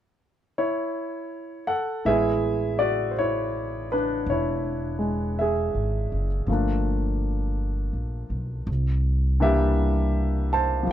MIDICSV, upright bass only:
0, 0, Header, 1, 2, 480
1, 0, Start_track
1, 0, Key_signature, 3, "major"
1, 0, Tempo, 1109057
1, 889, Time_signature, 4, 2, 24, 8
1, 2331, Tempo, 1096892
1, 4754, End_track
2, 0, Start_track
2, 0, Title_t, "Upright bass"
2, 0, Program_c, 0, 32
2, 889, Note_on_c, 0, 33, 60
2, 1835, Note_off_c, 0, 33, 0
2, 1846, Note_on_c, 0, 28, 66
2, 2470, Note_off_c, 0, 28, 0
2, 2489, Note_on_c, 0, 32, 46
2, 2639, Note_off_c, 0, 32, 0
2, 2652, Note_on_c, 0, 30, 52
2, 2800, Note_off_c, 0, 30, 0
2, 2803, Note_on_c, 0, 31, 60
2, 3428, Note_off_c, 0, 31, 0
2, 3444, Note_on_c, 0, 34, 43
2, 3596, Note_off_c, 0, 34, 0
2, 3606, Note_on_c, 0, 35, 48
2, 3757, Note_off_c, 0, 35, 0
2, 3767, Note_on_c, 0, 36, 74
2, 4712, Note_off_c, 0, 36, 0
2, 4732, Note_on_c, 0, 41, 66
2, 4754, Note_off_c, 0, 41, 0
2, 4754, End_track
0, 0, End_of_file